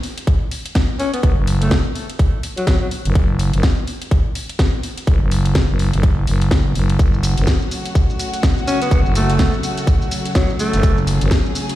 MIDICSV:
0, 0, Header, 1, 5, 480
1, 0, Start_track
1, 0, Key_signature, 3, "minor"
1, 0, Tempo, 480000
1, 1234, Time_signature, 4, 2, 24, 8
1, 11753, End_track
2, 0, Start_track
2, 0, Title_t, "Alto saxophone"
2, 0, Program_c, 0, 65
2, 992, Note_on_c, 0, 61, 91
2, 1106, Note_off_c, 0, 61, 0
2, 1134, Note_on_c, 0, 59, 85
2, 1198, Note_off_c, 0, 59, 0
2, 1232, Note_on_c, 0, 59, 73
2, 1323, Note_off_c, 0, 59, 0
2, 1614, Note_on_c, 0, 57, 87
2, 1754, Note_off_c, 0, 57, 0
2, 2575, Note_on_c, 0, 54, 92
2, 2654, Note_off_c, 0, 54, 0
2, 2674, Note_on_c, 0, 54, 93
2, 2764, Note_off_c, 0, 54, 0
2, 2815, Note_on_c, 0, 54, 75
2, 2878, Note_off_c, 0, 54, 0
2, 8673, Note_on_c, 0, 61, 93
2, 8786, Note_off_c, 0, 61, 0
2, 8817, Note_on_c, 0, 59, 86
2, 8879, Note_off_c, 0, 59, 0
2, 8914, Note_on_c, 0, 59, 73
2, 9004, Note_off_c, 0, 59, 0
2, 9155, Note_on_c, 0, 57, 91
2, 9535, Note_off_c, 0, 57, 0
2, 10353, Note_on_c, 0, 54, 90
2, 10523, Note_off_c, 0, 54, 0
2, 10593, Note_on_c, 0, 57, 96
2, 10974, Note_off_c, 0, 57, 0
2, 11753, End_track
3, 0, Start_track
3, 0, Title_t, "String section"
3, 0, Program_c, 1, 48
3, 6993, Note_on_c, 1, 66, 95
3, 6994, Note_on_c, 1, 49, 80
3, 6994, Note_on_c, 1, 54, 76
3, 6994, Note_on_c, 1, 57, 75
3, 10795, Note_off_c, 1, 66, 0
3, 10834, Note_on_c, 1, 68, 94
3, 11753, Note_off_c, 1, 49, 0
3, 11753, Note_off_c, 1, 54, 0
3, 11753, Note_off_c, 1, 57, 0
3, 11753, Note_off_c, 1, 68, 0
3, 11753, End_track
4, 0, Start_track
4, 0, Title_t, "FM bass"
4, 0, Program_c, 2, 39
4, 1233, Note_on_c, 2, 30, 93
4, 1352, Note_off_c, 2, 30, 0
4, 1375, Note_on_c, 2, 30, 96
4, 1832, Note_off_c, 2, 30, 0
4, 3054, Note_on_c, 2, 30, 98
4, 3138, Note_off_c, 2, 30, 0
4, 3154, Note_on_c, 2, 30, 101
4, 3512, Note_off_c, 2, 30, 0
4, 3536, Note_on_c, 2, 30, 100
4, 3618, Note_off_c, 2, 30, 0
4, 5074, Note_on_c, 2, 30, 99
4, 5192, Note_off_c, 2, 30, 0
4, 5215, Note_on_c, 2, 30, 96
4, 5672, Note_off_c, 2, 30, 0
4, 5694, Note_on_c, 2, 30, 96
4, 5912, Note_off_c, 2, 30, 0
4, 5935, Note_on_c, 2, 30, 102
4, 6258, Note_off_c, 2, 30, 0
4, 6272, Note_on_c, 2, 30, 96
4, 6737, Note_off_c, 2, 30, 0
4, 6752, Note_on_c, 2, 30, 95
4, 6977, Note_off_c, 2, 30, 0
4, 6993, Note_on_c, 2, 30, 99
4, 7352, Note_off_c, 2, 30, 0
4, 7373, Note_on_c, 2, 30, 95
4, 7457, Note_off_c, 2, 30, 0
4, 8913, Note_on_c, 2, 30, 97
4, 9032, Note_off_c, 2, 30, 0
4, 9053, Note_on_c, 2, 30, 95
4, 9511, Note_off_c, 2, 30, 0
4, 10734, Note_on_c, 2, 30, 94
4, 10818, Note_off_c, 2, 30, 0
4, 10833, Note_on_c, 2, 30, 91
4, 11192, Note_off_c, 2, 30, 0
4, 11214, Note_on_c, 2, 30, 103
4, 11297, Note_off_c, 2, 30, 0
4, 11753, End_track
5, 0, Start_track
5, 0, Title_t, "Drums"
5, 34, Note_on_c, 9, 46, 83
5, 134, Note_off_c, 9, 46, 0
5, 176, Note_on_c, 9, 42, 64
5, 273, Note_on_c, 9, 36, 121
5, 275, Note_off_c, 9, 42, 0
5, 275, Note_on_c, 9, 42, 52
5, 373, Note_off_c, 9, 36, 0
5, 375, Note_off_c, 9, 42, 0
5, 514, Note_on_c, 9, 46, 99
5, 614, Note_off_c, 9, 46, 0
5, 656, Note_on_c, 9, 42, 63
5, 752, Note_on_c, 9, 38, 117
5, 753, Note_on_c, 9, 36, 119
5, 755, Note_off_c, 9, 42, 0
5, 755, Note_on_c, 9, 42, 50
5, 852, Note_off_c, 9, 38, 0
5, 853, Note_off_c, 9, 36, 0
5, 855, Note_off_c, 9, 42, 0
5, 995, Note_on_c, 9, 46, 92
5, 1095, Note_off_c, 9, 46, 0
5, 1136, Note_on_c, 9, 42, 64
5, 1233, Note_on_c, 9, 36, 125
5, 1235, Note_off_c, 9, 42, 0
5, 1235, Note_on_c, 9, 42, 51
5, 1333, Note_off_c, 9, 36, 0
5, 1335, Note_off_c, 9, 42, 0
5, 1474, Note_on_c, 9, 46, 116
5, 1574, Note_off_c, 9, 46, 0
5, 1616, Note_on_c, 9, 42, 66
5, 1711, Note_on_c, 9, 38, 119
5, 1713, Note_on_c, 9, 36, 120
5, 1714, Note_off_c, 9, 42, 0
5, 1714, Note_on_c, 9, 42, 54
5, 1811, Note_off_c, 9, 38, 0
5, 1813, Note_off_c, 9, 36, 0
5, 1814, Note_off_c, 9, 42, 0
5, 1955, Note_on_c, 9, 46, 88
5, 2055, Note_off_c, 9, 46, 0
5, 2095, Note_on_c, 9, 42, 61
5, 2193, Note_on_c, 9, 36, 121
5, 2195, Note_off_c, 9, 42, 0
5, 2195, Note_on_c, 9, 42, 57
5, 2293, Note_off_c, 9, 36, 0
5, 2295, Note_off_c, 9, 42, 0
5, 2434, Note_on_c, 9, 46, 107
5, 2534, Note_off_c, 9, 46, 0
5, 2574, Note_on_c, 9, 42, 64
5, 2670, Note_on_c, 9, 38, 120
5, 2673, Note_off_c, 9, 42, 0
5, 2673, Note_on_c, 9, 36, 123
5, 2673, Note_on_c, 9, 42, 50
5, 2770, Note_off_c, 9, 38, 0
5, 2773, Note_off_c, 9, 36, 0
5, 2773, Note_off_c, 9, 42, 0
5, 2914, Note_on_c, 9, 46, 99
5, 3014, Note_off_c, 9, 46, 0
5, 3054, Note_on_c, 9, 42, 66
5, 3154, Note_off_c, 9, 42, 0
5, 3154, Note_on_c, 9, 36, 123
5, 3154, Note_on_c, 9, 42, 51
5, 3254, Note_off_c, 9, 36, 0
5, 3254, Note_off_c, 9, 42, 0
5, 3394, Note_on_c, 9, 46, 110
5, 3494, Note_off_c, 9, 46, 0
5, 3535, Note_on_c, 9, 42, 63
5, 3632, Note_on_c, 9, 38, 114
5, 3633, Note_on_c, 9, 36, 122
5, 3635, Note_off_c, 9, 42, 0
5, 3635, Note_on_c, 9, 42, 48
5, 3732, Note_off_c, 9, 38, 0
5, 3733, Note_off_c, 9, 36, 0
5, 3735, Note_off_c, 9, 42, 0
5, 3875, Note_on_c, 9, 46, 90
5, 3975, Note_off_c, 9, 46, 0
5, 4016, Note_on_c, 9, 42, 58
5, 4113, Note_on_c, 9, 36, 121
5, 4114, Note_off_c, 9, 42, 0
5, 4114, Note_on_c, 9, 42, 51
5, 4213, Note_off_c, 9, 36, 0
5, 4214, Note_off_c, 9, 42, 0
5, 4354, Note_on_c, 9, 46, 105
5, 4454, Note_off_c, 9, 46, 0
5, 4495, Note_on_c, 9, 42, 59
5, 4590, Note_on_c, 9, 38, 123
5, 4593, Note_on_c, 9, 36, 122
5, 4594, Note_off_c, 9, 42, 0
5, 4594, Note_on_c, 9, 42, 47
5, 4690, Note_off_c, 9, 38, 0
5, 4693, Note_off_c, 9, 36, 0
5, 4693, Note_off_c, 9, 42, 0
5, 4834, Note_on_c, 9, 46, 99
5, 4934, Note_off_c, 9, 46, 0
5, 4975, Note_on_c, 9, 42, 67
5, 5073, Note_on_c, 9, 36, 120
5, 5075, Note_off_c, 9, 42, 0
5, 5075, Note_on_c, 9, 42, 47
5, 5173, Note_off_c, 9, 36, 0
5, 5175, Note_off_c, 9, 42, 0
5, 5314, Note_on_c, 9, 46, 109
5, 5414, Note_off_c, 9, 46, 0
5, 5455, Note_on_c, 9, 42, 62
5, 5551, Note_on_c, 9, 38, 112
5, 5553, Note_on_c, 9, 36, 115
5, 5554, Note_off_c, 9, 42, 0
5, 5554, Note_on_c, 9, 42, 48
5, 5651, Note_off_c, 9, 38, 0
5, 5653, Note_off_c, 9, 36, 0
5, 5654, Note_off_c, 9, 42, 0
5, 5794, Note_on_c, 9, 46, 90
5, 5893, Note_off_c, 9, 46, 0
5, 5935, Note_on_c, 9, 42, 57
5, 6033, Note_off_c, 9, 42, 0
5, 6033, Note_on_c, 9, 36, 125
5, 6033, Note_on_c, 9, 42, 51
5, 6133, Note_off_c, 9, 36, 0
5, 6133, Note_off_c, 9, 42, 0
5, 6274, Note_on_c, 9, 46, 98
5, 6374, Note_off_c, 9, 46, 0
5, 6415, Note_on_c, 9, 42, 59
5, 6511, Note_on_c, 9, 38, 115
5, 6513, Note_on_c, 9, 36, 122
5, 6514, Note_off_c, 9, 42, 0
5, 6514, Note_on_c, 9, 42, 51
5, 6611, Note_off_c, 9, 38, 0
5, 6613, Note_off_c, 9, 36, 0
5, 6614, Note_off_c, 9, 42, 0
5, 6754, Note_on_c, 9, 46, 94
5, 6854, Note_off_c, 9, 46, 0
5, 6895, Note_on_c, 9, 42, 61
5, 6993, Note_on_c, 9, 36, 126
5, 6994, Note_off_c, 9, 42, 0
5, 6994, Note_on_c, 9, 42, 47
5, 6997, Note_on_c, 9, 82, 45
5, 7093, Note_off_c, 9, 36, 0
5, 7094, Note_off_c, 9, 42, 0
5, 7097, Note_off_c, 9, 82, 0
5, 7138, Note_on_c, 9, 82, 22
5, 7233, Note_on_c, 9, 46, 110
5, 7236, Note_off_c, 9, 82, 0
5, 7236, Note_on_c, 9, 82, 80
5, 7333, Note_off_c, 9, 46, 0
5, 7336, Note_off_c, 9, 82, 0
5, 7375, Note_on_c, 9, 42, 62
5, 7378, Note_on_c, 9, 82, 33
5, 7470, Note_on_c, 9, 38, 108
5, 7473, Note_off_c, 9, 42, 0
5, 7473, Note_on_c, 9, 36, 115
5, 7473, Note_on_c, 9, 42, 51
5, 7476, Note_off_c, 9, 82, 0
5, 7476, Note_on_c, 9, 82, 45
5, 7570, Note_off_c, 9, 38, 0
5, 7573, Note_off_c, 9, 36, 0
5, 7573, Note_off_c, 9, 42, 0
5, 7576, Note_off_c, 9, 82, 0
5, 7618, Note_on_c, 9, 82, 23
5, 7714, Note_on_c, 9, 46, 93
5, 7717, Note_off_c, 9, 82, 0
5, 7717, Note_on_c, 9, 82, 75
5, 7814, Note_off_c, 9, 46, 0
5, 7817, Note_off_c, 9, 82, 0
5, 7855, Note_on_c, 9, 42, 61
5, 7858, Note_on_c, 9, 82, 31
5, 7953, Note_on_c, 9, 36, 118
5, 7954, Note_off_c, 9, 42, 0
5, 7954, Note_on_c, 9, 42, 52
5, 7956, Note_off_c, 9, 82, 0
5, 7956, Note_on_c, 9, 82, 46
5, 8053, Note_off_c, 9, 36, 0
5, 8054, Note_off_c, 9, 42, 0
5, 8056, Note_off_c, 9, 82, 0
5, 8098, Note_on_c, 9, 82, 22
5, 8195, Note_on_c, 9, 46, 104
5, 8198, Note_off_c, 9, 82, 0
5, 8198, Note_on_c, 9, 82, 73
5, 8295, Note_off_c, 9, 46, 0
5, 8298, Note_off_c, 9, 82, 0
5, 8335, Note_on_c, 9, 42, 59
5, 8338, Note_on_c, 9, 82, 31
5, 8431, Note_on_c, 9, 38, 107
5, 8433, Note_on_c, 9, 36, 117
5, 8434, Note_off_c, 9, 42, 0
5, 8434, Note_on_c, 9, 42, 52
5, 8437, Note_off_c, 9, 82, 0
5, 8437, Note_on_c, 9, 82, 44
5, 8531, Note_off_c, 9, 38, 0
5, 8533, Note_off_c, 9, 36, 0
5, 8534, Note_off_c, 9, 42, 0
5, 8537, Note_off_c, 9, 82, 0
5, 8579, Note_on_c, 9, 82, 21
5, 8675, Note_on_c, 9, 46, 96
5, 8678, Note_off_c, 9, 82, 0
5, 8678, Note_on_c, 9, 82, 80
5, 8775, Note_off_c, 9, 46, 0
5, 8778, Note_off_c, 9, 82, 0
5, 8816, Note_on_c, 9, 42, 63
5, 8819, Note_on_c, 9, 82, 32
5, 8913, Note_on_c, 9, 36, 113
5, 8915, Note_off_c, 9, 42, 0
5, 8915, Note_on_c, 9, 42, 52
5, 8918, Note_off_c, 9, 82, 0
5, 8918, Note_on_c, 9, 82, 45
5, 9013, Note_off_c, 9, 36, 0
5, 9015, Note_off_c, 9, 42, 0
5, 9018, Note_off_c, 9, 82, 0
5, 9059, Note_on_c, 9, 82, 24
5, 9154, Note_on_c, 9, 46, 106
5, 9157, Note_off_c, 9, 82, 0
5, 9157, Note_on_c, 9, 82, 84
5, 9254, Note_off_c, 9, 46, 0
5, 9257, Note_off_c, 9, 82, 0
5, 9296, Note_on_c, 9, 42, 65
5, 9299, Note_on_c, 9, 82, 35
5, 9391, Note_on_c, 9, 38, 111
5, 9393, Note_on_c, 9, 36, 109
5, 9395, Note_off_c, 9, 42, 0
5, 9395, Note_on_c, 9, 42, 52
5, 9398, Note_off_c, 9, 82, 0
5, 9398, Note_on_c, 9, 82, 45
5, 9491, Note_off_c, 9, 38, 0
5, 9493, Note_off_c, 9, 36, 0
5, 9495, Note_off_c, 9, 42, 0
5, 9498, Note_off_c, 9, 82, 0
5, 9538, Note_on_c, 9, 82, 25
5, 9634, Note_on_c, 9, 46, 88
5, 9636, Note_off_c, 9, 82, 0
5, 9636, Note_on_c, 9, 82, 75
5, 9734, Note_off_c, 9, 46, 0
5, 9736, Note_off_c, 9, 82, 0
5, 9775, Note_on_c, 9, 42, 60
5, 9778, Note_on_c, 9, 82, 34
5, 9873, Note_on_c, 9, 36, 118
5, 9874, Note_off_c, 9, 42, 0
5, 9874, Note_on_c, 9, 42, 52
5, 9877, Note_off_c, 9, 82, 0
5, 9877, Note_on_c, 9, 82, 46
5, 9973, Note_off_c, 9, 36, 0
5, 9974, Note_off_c, 9, 42, 0
5, 9977, Note_off_c, 9, 82, 0
5, 10018, Note_on_c, 9, 82, 23
5, 10114, Note_on_c, 9, 46, 95
5, 10117, Note_off_c, 9, 82, 0
5, 10117, Note_on_c, 9, 82, 79
5, 10214, Note_off_c, 9, 46, 0
5, 10217, Note_off_c, 9, 82, 0
5, 10255, Note_on_c, 9, 42, 65
5, 10258, Note_on_c, 9, 82, 33
5, 10350, Note_on_c, 9, 38, 106
5, 10352, Note_on_c, 9, 36, 116
5, 10354, Note_off_c, 9, 42, 0
5, 10354, Note_on_c, 9, 42, 53
5, 10357, Note_off_c, 9, 82, 0
5, 10357, Note_on_c, 9, 82, 45
5, 10450, Note_off_c, 9, 38, 0
5, 10452, Note_off_c, 9, 36, 0
5, 10454, Note_off_c, 9, 42, 0
5, 10457, Note_off_c, 9, 82, 0
5, 10498, Note_on_c, 9, 82, 22
5, 10594, Note_on_c, 9, 46, 87
5, 10597, Note_off_c, 9, 82, 0
5, 10597, Note_on_c, 9, 82, 82
5, 10694, Note_off_c, 9, 46, 0
5, 10697, Note_off_c, 9, 82, 0
5, 10734, Note_on_c, 9, 42, 66
5, 10738, Note_on_c, 9, 82, 33
5, 10832, Note_on_c, 9, 36, 116
5, 10834, Note_off_c, 9, 42, 0
5, 10834, Note_on_c, 9, 42, 54
5, 10837, Note_off_c, 9, 82, 0
5, 10837, Note_on_c, 9, 82, 47
5, 10932, Note_off_c, 9, 36, 0
5, 10934, Note_off_c, 9, 42, 0
5, 10937, Note_off_c, 9, 82, 0
5, 10978, Note_on_c, 9, 82, 25
5, 11073, Note_on_c, 9, 46, 104
5, 11076, Note_off_c, 9, 82, 0
5, 11076, Note_on_c, 9, 82, 87
5, 11173, Note_off_c, 9, 46, 0
5, 11176, Note_off_c, 9, 82, 0
5, 11214, Note_on_c, 9, 42, 66
5, 11217, Note_on_c, 9, 82, 37
5, 11310, Note_on_c, 9, 38, 117
5, 11312, Note_on_c, 9, 36, 112
5, 11313, Note_off_c, 9, 42, 0
5, 11313, Note_on_c, 9, 42, 51
5, 11316, Note_off_c, 9, 82, 0
5, 11316, Note_on_c, 9, 82, 45
5, 11410, Note_off_c, 9, 38, 0
5, 11412, Note_off_c, 9, 36, 0
5, 11413, Note_off_c, 9, 42, 0
5, 11416, Note_off_c, 9, 82, 0
5, 11457, Note_on_c, 9, 82, 23
5, 11553, Note_on_c, 9, 46, 86
5, 11556, Note_off_c, 9, 82, 0
5, 11556, Note_on_c, 9, 82, 79
5, 11653, Note_off_c, 9, 46, 0
5, 11656, Note_off_c, 9, 82, 0
5, 11694, Note_on_c, 9, 42, 65
5, 11697, Note_on_c, 9, 82, 34
5, 11753, Note_off_c, 9, 42, 0
5, 11753, Note_off_c, 9, 82, 0
5, 11753, End_track
0, 0, End_of_file